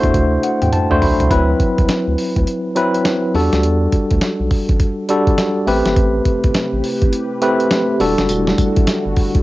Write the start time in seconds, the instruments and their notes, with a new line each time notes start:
Already playing: tine electric piano A3 D4 E4 F#4 C5
0.03 analog synth bass E2, kick, closed hi-hat
0.14 analog synth bass D2, kick, closed hi-hat, high tom
0.43 tine electric piano F#5, closed hi-hat
0.62 analog synth bass E2, tine electric piano G5, closed hi-hat, mid tom
0.73 tine electric piano A5, closed hi-hat, mid tom
0.90 analog synth bass D2, tine electric piano A3 D4 F#4 C5, mid tom
1.02 analog synth bass B1, tine electric piano B5, floor tom, open hi-hat
1.20 analog synth bass C2, closed hi-hat, floor tom
1.30 analog synth bass D2, tine electric piano F#3 C4 E4 B4, kick, closed hi-hat
1.60 kick, closed hi-hat
1.78 analog synth bass C2, kick, closed hi-hat
1.89 snare, closed hi-hat
2.07 analog synth bass D2
2.18 open hi-hat
2.36 analog synth bass D2, kick, closed hi-hat
2.47 closed hi-hat
2.76 tine electric piano F#3 C4 E4 B4, closed hi-hat
2.94 closed hi-hat
3.05 snare, closed hi-hat
3.34 analog synth bass E2, tine electric piano G3 D4 F#4 A4, open hi-hat
3.53 analog synth bass D2, snare, closed hi-hat
3.63 analog synth bass E2, closed hi-hat
3.92 kick, closed hi-hat
4.11 analog synth bass D2, kick, closed hi-hat
4.21 snare, closed hi-hat
4.40 analog synth bass B1
4.51 kick, open hi-hat
4.69 analog synth bass A1, kick, closed hi-hat
4.80 kick, closed hi-hat
5.09 tine electric piano G3 D4 F#4 A4, closed hi-hat
5.27 kick, closed hi-hat
5.38 snare, closed hi-hat
5.67 analog synth bass A1, tine electric piano A3 C4 G4 B4, open hi-hat
5.85 analog synth bass G1, snare, closed hi-hat
5.96 analog synth bass A1, analog synth pad C3 A3 E4 G4 B4, kick, closed hi-hat
6.25 kick, closed hi-hat
6.44 analog synth bass G1, kick, closed hi-hat
6.54 snare, closed hi-hat
6.73 analog synth bass A1
6.84 open hi-hat
7.02 analog synth bass A1, kick, closed hi-hat
7.13 closed hi-hat
7.42 tine electric piano A3 C4 G4 B4, closed hi-hat
7.60 closed hi-hat
7.71 snare, closed hi-hat
8.00 analog synth bass E1, analog synth pad D3 G3 F#4, tine electric piano G3 D4 F#4 A4, open hi-hat
8.18 analog synth bass F#1, snare, closed hi-hat
8.29 analog synth bass E1, closed hi-hat, tambourine
8.47 snare
8.58 kick, closed hi-hat, tambourine
8.76 analog synth bass A1, kick, closed hi-hat
8.87 snare, closed hi-hat, tambourine
9.06 analog synth bass G1
9.16 kick, open hi-hat
9.35 analog synth bass E1, kick, closed hi-hat